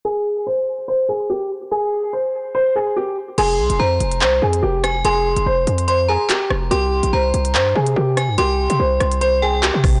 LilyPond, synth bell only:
\new Staff \with { instrumentName = "Synth bell" } { \time 4/4 \key f \minor \tempo 4 = 144 r1 | r1 | c'''4 bes''4 r4. aes''8 | c'''2 c'''8 bes''8 r4 |
c'''4 bes''4 r4. aes''8 | c'''2 c'''8 g''4. | }